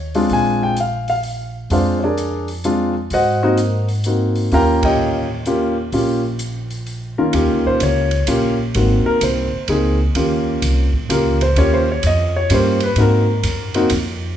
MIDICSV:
0, 0, Header, 1, 5, 480
1, 0, Start_track
1, 0, Tempo, 469116
1, 311, Time_signature, 3, 2, 24, 8
1, 14701, End_track
2, 0, Start_track
2, 0, Title_t, "Grand piano"
2, 0, Program_c, 0, 0
2, 154, Note_on_c, 0, 56, 69
2, 157, Note_on_c, 0, 60, 55
2, 157, Note_on_c, 0, 62, 60
2, 157, Note_on_c, 0, 65, 70
2, 339, Note_on_c, 0, 80, 83
2, 633, Note_off_c, 0, 80, 0
2, 646, Note_on_c, 0, 79, 77
2, 760, Note_off_c, 0, 56, 0
2, 761, Note_off_c, 0, 60, 0
2, 761, Note_off_c, 0, 62, 0
2, 761, Note_off_c, 0, 65, 0
2, 794, Note_off_c, 0, 79, 0
2, 822, Note_on_c, 0, 77, 68
2, 1106, Note_off_c, 0, 77, 0
2, 1121, Note_on_c, 0, 77, 79
2, 1214, Note_off_c, 0, 77, 0
2, 1751, Note_on_c, 0, 56, 52
2, 1753, Note_on_c, 0, 60, 48
2, 1753, Note_on_c, 0, 62, 49
2, 1757, Note_on_c, 0, 65, 60
2, 1767, Note_on_c, 0, 77, 60
2, 1771, Note_on_c, 0, 72, 52
2, 1773, Note_on_c, 0, 74, 52
2, 2036, Note_off_c, 0, 56, 0
2, 2036, Note_off_c, 0, 60, 0
2, 2037, Note_off_c, 0, 62, 0
2, 2038, Note_off_c, 0, 65, 0
2, 2040, Note_on_c, 0, 73, 42
2, 2060, Note_off_c, 0, 73, 0
2, 2066, Note_off_c, 0, 77, 0
2, 2067, Note_off_c, 0, 74, 0
2, 2068, Note_off_c, 0, 72, 0
2, 2083, Note_on_c, 0, 74, 56
2, 2091, Note_on_c, 0, 62, 49
2, 2091, Note_on_c, 0, 68, 53
2, 2091, Note_on_c, 0, 70, 49
2, 2521, Note_off_c, 0, 74, 0
2, 2525, Note_off_c, 0, 62, 0
2, 2525, Note_off_c, 0, 68, 0
2, 2525, Note_off_c, 0, 70, 0
2, 2709, Note_on_c, 0, 56, 55
2, 2709, Note_on_c, 0, 60, 53
2, 2710, Note_on_c, 0, 62, 55
2, 2711, Note_on_c, 0, 65, 65
2, 2994, Note_off_c, 0, 56, 0
2, 2994, Note_off_c, 0, 60, 0
2, 2995, Note_off_c, 0, 62, 0
2, 2995, Note_off_c, 0, 65, 0
2, 3206, Note_on_c, 0, 78, 84
2, 3210, Note_on_c, 0, 66, 60
2, 3211, Note_on_c, 0, 72, 61
2, 3213, Note_on_c, 0, 75, 69
2, 3495, Note_off_c, 0, 66, 0
2, 3504, Note_off_c, 0, 72, 0
2, 3505, Note_off_c, 0, 78, 0
2, 3506, Note_on_c, 0, 60, 61
2, 3507, Note_on_c, 0, 58, 72
2, 3508, Note_off_c, 0, 75, 0
2, 3511, Note_on_c, 0, 63, 67
2, 3511, Note_on_c, 0, 66, 85
2, 3519, Note_on_c, 0, 72, 46
2, 3523, Note_on_c, 0, 70, 47
2, 3523, Note_on_c, 0, 75, 57
2, 3651, Note_off_c, 0, 58, 0
2, 3651, Note_off_c, 0, 60, 0
2, 3653, Note_off_c, 0, 66, 0
2, 3654, Note_off_c, 0, 63, 0
2, 3959, Note_off_c, 0, 72, 0
2, 3961, Note_off_c, 0, 70, 0
2, 3961, Note_off_c, 0, 75, 0
2, 4153, Note_on_c, 0, 58, 50
2, 4159, Note_on_c, 0, 63, 44
2, 4160, Note_on_c, 0, 60, 44
2, 4160, Note_on_c, 0, 66, 50
2, 4612, Note_off_c, 0, 58, 0
2, 4628, Note_on_c, 0, 58, 64
2, 4629, Note_on_c, 0, 65, 57
2, 4630, Note_on_c, 0, 61, 56
2, 4633, Note_off_c, 0, 60, 0
2, 4633, Note_off_c, 0, 63, 0
2, 4633, Note_off_c, 0, 66, 0
2, 4633, Note_on_c, 0, 67, 61
2, 4646, Note_on_c, 0, 79, 67
2, 4647, Note_on_c, 0, 77, 67
2, 4647, Note_on_c, 0, 82, 84
2, 4654, Note_on_c, 0, 70, 64
2, 4942, Note_off_c, 0, 79, 0
2, 4946, Note_off_c, 0, 67, 0
2, 4946, Note_off_c, 0, 77, 0
2, 4946, Note_off_c, 0, 82, 0
2, 4949, Note_off_c, 0, 70, 0
2, 4957, Note_on_c, 0, 79, 76
2, 4961, Note_on_c, 0, 67, 62
2, 4962, Note_on_c, 0, 73, 64
2, 4962, Note_on_c, 0, 75, 69
2, 5362, Note_off_c, 0, 58, 0
2, 5362, Note_off_c, 0, 65, 0
2, 5363, Note_off_c, 0, 61, 0
2, 5398, Note_off_c, 0, 79, 0
2, 5400, Note_off_c, 0, 67, 0
2, 5401, Note_off_c, 0, 73, 0
2, 5401, Note_off_c, 0, 75, 0
2, 5591, Note_on_c, 0, 58, 62
2, 5594, Note_on_c, 0, 61, 48
2, 5599, Note_on_c, 0, 65, 51
2, 5600, Note_on_c, 0, 67, 65
2, 5875, Note_off_c, 0, 58, 0
2, 5877, Note_off_c, 0, 61, 0
2, 5879, Note_off_c, 0, 65, 0
2, 5880, Note_off_c, 0, 67, 0
2, 6071, Note_on_c, 0, 61, 51
2, 6072, Note_on_c, 0, 58, 50
2, 6074, Note_on_c, 0, 65, 49
2, 6078, Note_on_c, 0, 67, 62
2, 6356, Note_off_c, 0, 58, 0
2, 6356, Note_off_c, 0, 61, 0
2, 6357, Note_off_c, 0, 65, 0
2, 6359, Note_off_c, 0, 67, 0
2, 7349, Note_on_c, 0, 70, 65
2, 7351, Note_on_c, 0, 51, 61
2, 7351, Note_on_c, 0, 58, 53
2, 7351, Note_on_c, 0, 65, 58
2, 7352, Note_on_c, 0, 61, 53
2, 7489, Note_off_c, 0, 58, 0
2, 7491, Note_off_c, 0, 65, 0
2, 7492, Note_off_c, 0, 61, 0
2, 7504, Note_on_c, 0, 58, 56
2, 7507, Note_on_c, 0, 65, 53
2, 7508, Note_on_c, 0, 61, 54
2, 7510, Note_on_c, 0, 67, 69
2, 7846, Note_on_c, 0, 72, 76
2, 7958, Note_off_c, 0, 70, 0
2, 7959, Note_off_c, 0, 51, 0
2, 7994, Note_off_c, 0, 72, 0
2, 8012, Note_on_c, 0, 73, 78
2, 8241, Note_off_c, 0, 58, 0
2, 8243, Note_off_c, 0, 61, 0
2, 8243, Note_off_c, 0, 65, 0
2, 8244, Note_off_c, 0, 67, 0
2, 8448, Note_off_c, 0, 73, 0
2, 8467, Note_on_c, 0, 58, 59
2, 8471, Note_on_c, 0, 61, 55
2, 8473, Note_on_c, 0, 65, 53
2, 8477, Note_on_c, 0, 67, 66
2, 8755, Note_off_c, 0, 58, 0
2, 8757, Note_off_c, 0, 61, 0
2, 8758, Note_off_c, 0, 65, 0
2, 8760, Note_off_c, 0, 67, 0
2, 8955, Note_on_c, 0, 58, 55
2, 8958, Note_on_c, 0, 66, 57
2, 8959, Note_on_c, 0, 63, 44
2, 8961, Note_on_c, 0, 60, 50
2, 9271, Note_on_c, 0, 70, 86
2, 9427, Note_off_c, 0, 70, 0
2, 9447, Note_on_c, 0, 72, 62
2, 9688, Note_off_c, 0, 58, 0
2, 9689, Note_off_c, 0, 66, 0
2, 9690, Note_off_c, 0, 63, 0
2, 9691, Note_off_c, 0, 60, 0
2, 9886, Note_off_c, 0, 72, 0
2, 9914, Note_on_c, 0, 60, 51
2, 9916, Note_on_c, 0, 58, 55
2, 9917, Note_on_c, 0, 68, 59
2, 9920, Note_on_c, 0, 63, 54
2, 10199, Note_off_c, 0, 60, 0
2, 10200, Note_off_c, 0, 58, 0
2, 10201, Note_off_c, 0, 68, 0
2, 10202, Note_off_c, 0, 63, 0
2, 10393, Note_on_c, 0, 58, 57
2, 10396, Note_on_c, 0, 61, 48
2, 10398, Note_on_c, 0, 65, 47
2, 10401, Note_on_c, 0, 67, 60
2, 11127, Note_off_c, 0, 58, 0
2, 11129, Note_off_c, 0, 61, 0
2, 11130, Note_off_c, 0, 65, 0
2, 11131, Note_off_c, 0, 67, 0
2, 11351, Note_on_c, 0, 58, 55
2, 11355, Note_on_c, 0, 61, 49
2, 11355, Note_on_c, 0, 65, 50
2, 11355, Note_on_c, 0, 67, 57
2, 11374, Note_on_c, 0, 70, 71
2, 11638, Note_off_c, 0, 58, 0
2, 11640, Note_off_c, 0, 61, 0
2, 11640, Note_off_c, 0, 65, 0
2, 11640, Note_off_c, 0, 67, 0
2, 11672, Note_off_c, 0, 70, 0
2, 11687, Note_on_c, 0, 72, 78
2, 11836, Note_off_c, 0, 72, 0
2, 11837, Note_on_c, 0, 58, 59
2, 11840, Note_on_c, 0, 65, 54
2, 11841, Note_on_c, 0, 61, 56
2, 11842, Note_on_c, 0, 67, 70
2, 11854, Note_on_c, 0, 73, 83
2, 11999, Note_off_c, 0, 73, 0
2, 12009, Note_on_c, 0, 72, 79
2, 12121, Note_off_c, 0, 58, 0
2, 12122, Note_off_c, 0, 65, 0
2, 12123, Note_off_c, 0, 61, 0
2, 12123, Note_off_c, 0, 67, 0
2, 12156, Note_off_c, 0, 72, 0
2, 12192, Note_on_c, 0, 73, 67
2, 12328, Note_off_c, 0, 73, 0
2, 12346, Note_on_c, 0, 75, 77
2, 12638, Note_off_c, 0, 75, 0
2, 12651, Note_on_c, 0, 73, 80
2, 12795, Note_on_c, 0, 58, 60
2, 12795, Note_on_c, 0, 65, 48
2, 12798, Note_off_c, 0, 73, 0
2, 12798, Note_on_c, 0, 61, 53
2, 12801, Note_on_c, 0, 67, 64
2, 12832, Note_on_c, 0, 72, 76
2, 13080, Note_off_c, 0, 58, 0
2, 13080, Note_off_c, 0, 65, 0
2, 13081, Note_off_c, 0, 61, 0
2, 13083, Note_off_c, 0, 67, 0
2, 13121, Note_off_c, 0, 72, 0
2, 13134, Note_on_c, 0, 71, 77
2, 13274, Note_on_c, 0, 58, 57
2, 13278, Note_on_c, 0, 60, 56
2, 13279, Note_off_c, 0, 71, 0
2, 13280, Note_on_c, 0, 63, 49
2, 13282, Note_on_c, 0, 66, 65
2, 13304, Note_on_c, 0, 70, 73
2, 13559, Note_off_c, 0, 58, 0
2, 13561, Note_off_c, 0, 60, 0
2, 13562, Note_off_c, 0, 63, 0
2, 13563, Note_off_c, 0, 66, 0
2, 14069, Note_on_c, 0, 60, 64
2, 14071, Note_on_c, 0, 58, 73
2, 14076, Note_on_c, 0, 66, 75
2, 14077, Note_on_c, 0, 63, 70
2, 14206, Note_off_c, 0, 70, 0
2, 14214, Note_off_c, 0, 60, 0
2, 14215, Note_off_c, 0, 58, 0
2, 14218, Note_off_c, 0, 63, 0
2, 14218, Note_off_c, 0, 66, 0
2, 14701, End_track
3, 0, Start_track
3, 0, Title_t, "Upright bass"
3, 0, Program_c, 1, 32
3, 0, Note_on_c, 1, 39, 74
3, 267, Note_off_c, 1, 39, 0
3, 311, Note_on_c, 1, 34, 74
3, 1707, Note_off_c, 1, 34, 0
3, 1740, Note_on_c, 1, 41, 76
3, 3142, Note_off_c, 1, 41, 0
3, 3182, Note_on_c, 1, 44, 80
3, 4583, Note_off_c, 1, 44, 0
3, 4622, Note_on_c, 1, 39, 72
3, 6024, Note_off_c, 1, 39, 0
3, 6063, Note_on_c, 1, 34, 76
3, 7303, Note_off_c, 1, 34, 0
3, 7501, Note_on_c, 1, 39, 78
3, 7669, Note_off_c, 1, 39, 0
3, 7669, Note_on_c, 1, 37, 47
3, 7829, Note_off_c, 1, 37, 0
3, 7837, Note_on_c, 1, 34, 56
3, 7982, Note_off_c, 1, 34, 0
3, 7990, Note_on_c, 1, 37, 82
3, 8456, Note_off_c, 1, 37, 0
3, 8468, Note_on_c, 1, 34, 74
3, 8935, Note_off_c, 1, 34, 0
3, 8952, Note_on_c, 1, 32, 83
3, 9247, Note_off_c, 1, 32, 0
3, 9426, Note_on_c, 1, 36, 89
3, 9724, Note_off_c, 1, 36, 0
3, 9908, Note_on_c, 1, 37, 80
3, 10375, Note_off_c, 1, 37, 0
3, 10384, Note_on_c, 1, 39, 73
3, 10853, Note_off_c, 1, 39, 0
3, 10867, Note_on_c, 1, 36, 81
3, 11165, Note_off_c, 1, 36, 0
3, 11349, Note_on_c, 1, 37, 82
3, 11816, Note_off_c, 1, 37, 0
3, 11821, Note_on_c, 1, 39, 78
3, 12292, Note_off_c, 1, 39, 0
3, 12313, Note_on_c, 1, 41, 91
3, 12778, Note_off_c, 1, 41, 0
3, 12789, Note_on_c, 1, 43, 80
3, 13251, Note_off_c, 1, 43, 0
3, 13258, Note_on_c, 1, 44, 71
3, 13730, Note_off_c, 1, 44, 0
3, 13745, Note_on_c, 1, 42, 86
3, 14213, Note_off_c, 1, 42, 0
3, 14229, Note_on_c, 1, 41, 87
3, 14694, Note_off_c, 1, 41, 0
3, 14701, End_track
4, 0, Start_track
4, 0, Title_t, "Muted upright bass strokes"
4, 7342, Note_on_c, 9, 29, 31
4, 7444, Note_off_c, 9, 29, 0
4, 9267, Note_on_c, 9, 29, 33
4, 9369, Note_off_c, 9, 29, 0
4, 9753, Note_on_c, 9, 29, 38
4, 9855, Note_off_c, 9, 29, 0
4, 11185, Note_on_c, 9, 29, 35
4, 11287, Note_off_c, 9, 29, 0
4, 14701, End_track
5, 0, Start_track
5, 0, Title_t, "Drums"
5, 148, Note_on_c, 9, 46, 34
5, 250, Note_off_c, 9, 46, 0
5, 301, Note_on_c, 9, 46, 39
5, 403, Note_off_c, 9, 46, 0
5, 783, Note_on_c, 9, 42, 43
5, 885, Note_off_c, 9, 42, 0
5, 1103, Note_on_c, 9, 46, 33
5, 1205, Note_off_c, 9, 46, 0
5, 1262, Note_on_c, 9, 46, 35
5, 1364, Note_off_c, 9, 46, 0
5, 1742, Note_on_c, 9, 46, 42
5, 1844, Note_off_c, 9, 46, 0
5, 2225, Note_on_c, 9, 42, 43
5, 2328, Note_off_c, 9, 42, 0
5, 2538, Note_on_c, 9, 46, 31
5, 2640, Note_off_c, 9, 46, 0
5, 2702, Note_on_c, 9, 42, 42
5, 2804, Note_off_c, 9, 42, 0
5, 3175, Note_on_c, 9, 46, 39
5, 3278, Note_off_c, 9, 46, 0
5, 3657, Note_on_c, 9, 42, 47
5, 3760, Note_off_c, 9, 42, 0
5, 3974, Note_on_c, 9, 46, 33
5, 4077, Note_off_c, 9, 46, 0
5, 4132, Note_on_c, 9, 42, 45
5, 4234, Note_off_c, 9, 42, 0
5, 4455, Note_on_c, 9, 46, 33
5, 4557, Note_off_c, 9, 46, 0
5, 4620, Note_on_c, 9, 46, 41
5, 4722, Note_off_c, 9, 46, 0
5, 4940, Note_on_c, 9, 36, 77
5, 4940, Note_on_c, 9, 51, 65
5, 5042, Note_off_c, 9, 51, 0
5, 5043, Note_off_c, 9, 36, 0
5, 5582, Note_on_c, 9, 42, 46
5, 5684, Note_off_c, 9, 42, 0
5, 6061, Note_on_c, 9, 46, 42
5, 6163, Note_off_c, 9, 46, 0
5, 6538, Note_on_c, 9, 42, 46
5, 6640, Note_off_c, 9, 42, 0
5, 6860, Note_on_c, 9, 46, 34
5, 6963, Note_off_c, 9, 46, 0
5, 7024, Note_on_c, 9, 46, 37
5, 7127, Note_off_c, 9, 46, 0
5, 7499, Note_on_c, 9, 51, 54
5, 7602, Note_off_c, 9, 51, 0
5, 7982, Note_on_c, 9, 44, 50
5, 7982, Note_on_c, 9, 51, 60
5, 8085, Note_off_c, 9, 44, 0
5, 8085, Note_off_c, 9, 51, 0
5, 8299, Note_on_c, 9, 51, 37
5, 8401, Note_off_c, 9, 51, 0
5, 8461, Note_on_c, 9, 44, 44
5, 8461, Note_on_c, 9, 51, 64
5, 8563, Note_off_c, 9, 44, 0
5, 8563, Note_off_c, 9, 51, 0
5, 8947, Note_on_c, 9, 51, 54
5, 9050, Note_off_c, 9, 51, 0
5, 9425, Note_on_c, 9, 44, 51
5, 9425, Note_on_c, 9, 51, 59
5, 9527, Note_off_c, 9, 44, 0
5, 9527, Note_off_c, 9, 51, 0
5, 9902, Note_on_c, 9, 51, 50
5, 10004, Note_off_c, 9, 51, 0
5, 10385, Note_on_c, 9, 51, 53
5, 10487, Note_off_c, 9, 51, 0
5, 10868, Note_on_c, 9, 44, 51
5, 10868, Note_on_c, 9, 51, 57
5, 10971, Note_off_c, 9, 44, 0
5, 10971, Note_off_c, 9, 51, 0
5, 11187, Note_on_c, 9, 36, 47
5, 11289, Note_off_c, 9, 36, 0
5, 11356, Note_on_c, 9, 44, 51
5, 11356, Note_on_c, 9, 51, 60
5, 11459, Note_off_c, 9, 44, 0
5, 11459, Note_off_c, 9, 51, 0
5, 11675, Note_on_c, 9, 51, 43
5, 11778, Note_off_c, 9, 51, 0
5, 11831, Note_on_c, 9, 51, 57
5, 11933, Note_off_c, 9, 51, 0
5, 12307, Note_on_c, 9, 44, 44
5, 12307, Note_on_c, 9, 51, 59
5, 12410, Note_off_c, 9, 44, 0
5, 12410, Note_off_c, 9, 51, 0
5, 12787, Note_on_c, 9, 44, 59
5, 12787, Note_on_c, 9, 51, 65
5, 12890, Note_off_c, 9, 44, 0
5, 12890, Note_off_c, 9, 51, 0
5, 13100, Note_on_c, 9, 51, 46
5, 13203, Note_off_c, 9, 51, 0
5, 13259, Note_on_c, 9, 51, 54
5, 13361, Note_off_c, 9, 51, 0
5, 13745, Note_on_c, 9, 44, 49
5, 13745, Note_on_c, 9, 51, 60
5, 13848, Note_off_c, 9, 44, 0
5, 13848, Note_off_c, 9, 51, 0
5, 14062, Note_on_c, 9, 51, 43
5, 14164, Note_off_c, 9, 51, 0
5, 14219, Note_on_c, 9, 44, 46
5, 14219, Note_on_c, 9, 51, 67
5, 14321, Note_off_c, 9, 44, 0
5, 14321, Note_off_c, 9, 51, 0
5, 14701, End_track
0, 0, End_of_file